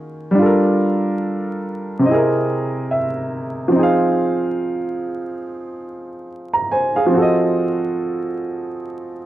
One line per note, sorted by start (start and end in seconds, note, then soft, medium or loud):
0.00 0.30 D#3 medium
0.00 0.31 A#3 medium
0.00 0.33 C#4 medium
0.00 0.34 F4 medium
0.00 0.36 F#4 medium
0.00 0.37 G#4 medium
0.31 2.00 G3 medium
0.31 2.02 D4 medium
0.39 2.04 F4 medium
0.39 2.05 A4 medium
0.46 2.07 A#4 medium
1.99 3.68 C3 medium
1.99 3.70 C4 medium
2.05 3.73 E4 medium
2.05 3.71 D#5 medium
2.11 3.74 G#4 medium
2.11 3.76 A#4 medium
2.91 3.71 E5 medium
3.68 7.05 F3 medium
3.68 7.07 C4 medium
3.75 7.09 D#4 medium
3.75 6.27 G#4 medium
3.83 6.29 F5 medium
6.54 6.70 A#5 medium
6.72 6.94 C5 medium
6.72 6.94 G#5 medium
6.96 7.36 G#4 medium
6.96 7.36 F5 medium
7.07 9.26 F3 medium
7.07 9.26 C4 medium
7.14 9.26 F#4 medium
7.14 9.26 A4 medium
7.22 9.26 D#5 medium